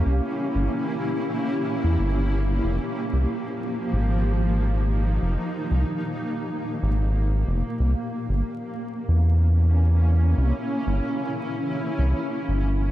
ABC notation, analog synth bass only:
X:1
M:4/4
L:1/16
Q:1/4=93
K:Fm
V:1 name="Analog synth bass" clef=bass
C,, z2 G,,, z6 z =E,, G,,,4 | F,,, z2 C,, z4 A,,,8 | F,,, z2 C,, z6 A,,,4 F,,, z | C,, z2 G,,, z4 =E,,8 |
C,, z2 G,,, z6 C,, z2 G,,,3 |]